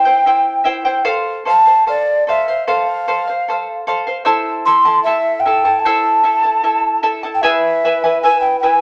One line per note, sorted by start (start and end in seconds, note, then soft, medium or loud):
0.00 0.67 G5 loud
0.05 0.25 E4 soft
0.05 0.26 C5 medium
0.05 0.26 G5 medium
0.26 0.64 E4 medium
0.26 0.65 C5 medium
0.26 0.63 E5 medium
0.26 0.64 G5 medium
0.64 0.85 E4 medium
0.64 0.84 C5 medium
0.64 0.85 E5 medium
0.64 0.84 G5 medium
0.85 1.06 E4 soft
0.85 1.03 C5 medium
0.85 1.04 G5 medium
1.04 1.44 A4 loud
1.04 1.45 C5 medium
1.04 1.45 F5 medium
1.45 1.66 A4 medium
1.45 1.65 C5 medium
1.45 1.64 F5 medium
1.45 1.85 A5 loud
1.65 1.86 C5 soft
1.65 1.86 F5 medium
1.86 2.26 A4 medium
1.86 2.26 C5 medium
1.86 2.25 D5 loud
1.86 2.26 F5 medium
2.27 2.46 A4 medium
2.27 2.47 C5 medium
2.27 2.64 E5 loud
2.27 2.47 F5 medium
2.48 2.66 C5 soft
2.48 2.67 F5 medium
2.67 3.06 A4 medium
2.67 3.06 C5 medium
2.67 3.07 F5 medium
2.67 3.82 F5 medium
3.08 3.26 A4 medium
3.08 3.27 C5 medium
3.08 3.26 F5 medium
3.28 3.47 C5 soft
3.28 3.46 F5 medium
3.48 3.86 A4 medium
3.48 3.86 C5 medium
3.48 3.87 F5 medium
3.87 4.06 A4 medium
3.87 4.06 C5 medium
3.87 4.06 F5 medium
4.07 4.24 C5 medium
4.07 4.24 F5 medium
4.25 4.65 E4 loud
4.25 4.65 A4 loud
4.25 4.65 C5 medium
4.25 4.64 E5 medium
4.25 4.65 A5 loud
4.66 4.85 E4 medium
4.66 4.84 A4 medium
4.66 4.85 E5 medium
4.66 4.84 A5 medium
4.66 5.02 C6 loud
4.85 5.05 E4 soft
4.85 5.05 A4 medium
4.85 5.05 A5 medium
5.04 5.45 E4 medium
5.04 5.45 A4 medium
5.04 5.42 E5 loud
5.04 5.44 E5 medium
5.08 5.46 A5 medium
5.40 5.81 G5 loud
5.45 5.65 E4 medium
5.45 5.64 A4 medium
5.45 5.64 E5 medium
5.45 5.64 A5 medium
5.65 5.85 E4 soft
5.65 5.84 A4 medium
5.65 5.84 A5 medium
5.80 7.01 A5 loud
5.85 6.23 E4 medium
5.85 6.24 A4 medium
5.85 6.24 C5 medium
5.85 6.22 E5 medium
5.85 6.24 A5 medium
6.24 6.43 E4 medium
6.24 6.43 A4 medium
6.24 6.43 E5 medium
6.24 6.42 A5 medium
6.43 6.62 E4 soft
6.43 6.63 A4 soft
6.43 6.63 A5 medium
6.64 7.02 E4 medium
6.64 7.02 A4 medium
6.64 7.02 E5 medium
6.64 7.02 A5 medium
7.03 7.23 E4 medium
7.03 7.23 A4 medium
7.03 7.23 E5 medium
7.03 7.22 A5 medium
7.23 7.42 E4 medium
7.23 7.43 A4 medium
7.23 7.43 A5 medium
7.34 7.43 G5 medium
7.42 7.83 E4 medium
7.42 7.82 G#4 medium
7.42 7.83 B4 medium
7.42 8.22 E5 loud
7.42 7.83 E5 medium
7.42 7.83 G#5 medium
7.85 8.04 E4 medium
7.85 8.04 B4 medium
7.85 8.03 E5 medium
7.85 8.03 G#5 medium
8.04 8.23 E4 medium
8.04 8.23 B4 medium
8.04 8.23 G#5 medium
8.22 8.62 E4 medium
8.22 8.62 B4 medium
8.22 8.61 E5 medium
8.22 8.40 G#5 loud
8.22 8.63 G#5 medium
8.41 8.59 G5 loud
8.60 8.81 E4 medium
8.60 8.81 B4 medium
8.60 8.81 E5 medium
8.60 8.81 G#5 loud
8.64 8.81 G#5 medium